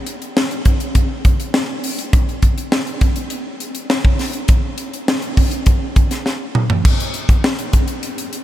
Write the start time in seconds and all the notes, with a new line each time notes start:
0.07 closed hi-hat
0.22 closed hi-hat
0.37 snare
0.51 closed hi-hat
0.65 kick, closed hi-hat
0.80 closed hi-hat
0.95 kick, closed hi-hat
1.25 kick, closed hi-hat
1.40 closed hi-hat
1.54 snare
1.84 open hi-hat
1.99 closed hi-hat
2.13 kick, closed hi-hat
2.29 closed hi-hat
2.42 kick, closed hi-hat
2.58 closed hi-hat
2.72 snare
2.87 closed hi-hat
3.01 kick, closed hi-hat
3.16 closed hi-hat
3.30 closed hi-hat
3.60 closed hi-hat
3.75 closed hi-hat
3.90 snare
4.05 kick
4.19 snare, open hi-hat
4.33 closed hi-hat
4.48 kick, closed hi-hat
4.78 closed hi-hat
4.93 closed hi-hat
5.08 snare
5.22 closed hi-hat
5.37 kick, open hi-hat
5.51 closed hi-hat
5.66 kick, closed hi-hat
5.96 kick, closed hi-hat
6.11 snare, closed hi-hat
6.26 snare
6.55 mid tom
6.70 floor tom
6.85 kick, crash
7.00 closed hi-hat
7.14 closed hi-hat
7.29 kick, closed hi-hat
7.44 snare
7.59 closed hi-hat
7.73 kick, closed hi-hat
7.88 closed hi-hat
8.03 closed hi-hat
8.18 closed hi-hat
8.33 closed hi-hat